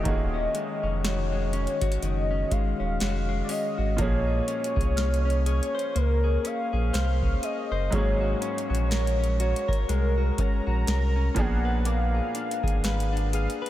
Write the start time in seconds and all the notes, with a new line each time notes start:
Already playing: A3 G4 D#5
0.03 D#1 D#3 A#3 C#4 F4, kick, closed hi-hat
0.08 F#4 G#4
0.34 C#4
0.55 G#3, closed hi-hat
0.83 F1 C#4
1.04 F#4 C#5, snare, closed hi-hat
1.33 G#3
1.53 C#4, closed hi-hat
1.67 closed hi-hat
1.81 F#4, kick, closed hi-hat
1.92 closed hi-hat
2.02 F#1 D#3 D#5, closed hi-hat
2.31 C#4
2.51 G#3 F5, kick, closed hi-hat
2.80 D#1 C#4
3.00 F1 F#4, snare, closed hi-hat
3.29 G#3
3.44 D5
3.49 C#4 D#5, open hi-hat
3.78 G#1 F#4
3.97 A#1 A#2 F3 A#3 C#5, kick, closed hi-hat
4.01 C#4 G#4
4.27 G#4
4.48 C#4, closed hi-hat
4.64 closed hi-hat
4.76 C2 G#4, kick
4.81 closed hi-hat
4.97 F6, snare, closed hi-hat
5.14 closed hi-hat
5.25 C#4
5.30 closed hi-hat
5.46 G#4 C#5, closed hi-hat
5.63 closed hi-hat
5.75 C5
5.79 closed hi-hat
5.95 C#2 A#3 A#4, closed hi-hat
6.24 G#4
6.45 C#4 F5, closed hi-hat
6.73 A#1 G#4
6.93 C2 C5 F6, snare, closed hi-hat
7.22 C#4, kick
7.43 G#4 D#5, closed hi-hat
7.71 F#1 C5
7.90 G#1 G#2 F#3 G#3 A#3 C#5, kick, closed hi-hat
7.95 C#4 G#4
8.21 F#4
8.42 C#4, closed hi-hat
8.58 closed hi-hat
8.70 A#1 F#4
8.75 closed hi-hat
8.91 A#4, snare, closed hi-hat
9.07 closed hi-hat
9.19 C#4
9.24 closed hi-hat
9.40 F#4 C#5, closed hi-hat
9.56 closed hi-hat
9.68 A#4, kick
9.73 closed hi-hat
9.89 C2 G#3 A#4, closed hi-hat
10.18 F#4
10.38 C#4 A#5, kick, closed hi-hat
10.67 A#1 F#4
10.87 C2 A#4, snare, closed hi-hat
11.16 C#4
11.35 A#1 A#2 F3 A#3 B3 F#5, kick, closed hi-hat
11.39 D4 G#4
11.65 B4
11.85 A#3 F5 D6, closed hi-hat
12.15 G#4
12.35 D4, closed hi-hat
12.51 closed hi-hat
12.63 G#1 G#4, kick
12.68 closed hi-hat
12.84 B4, snare, closed hi-hat
13.00 closed hi-hat
13.13 D4
13.17 closed hi-hat
13.33 G#4 F5, closed hi-hat
13.50 closed hi-hat
13.62 B4
13.66 closed hi-hat